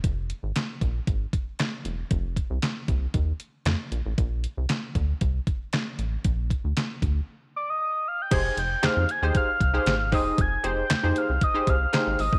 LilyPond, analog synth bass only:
\new Staff \with { instrumentName = "Analog synth bass" } { \clef bass \time 4/4 \key f \dorian \tempo 4 = 116 f,,8. aes,,16 r8 bes,,8 aes,,8 r4 e,,8 | f,,8. c,16 r8 c,8 ees,8 r8 f,16 r16 bes,,16 a,,16 | bes,,8. c,16 r8 d,8 c,8 r4 a,,8 | bes,,8. d,16 r8 d,8 r2 |
f,,8 f,,8 f,16 f,16 r16 ees,16 r8 c,8 aes,,8 e,,8 | f,,8 f,,8 f,16 f,16 r16 c,16 r8 c,8 r16 aes,,16 aes,,16 a,,16 | }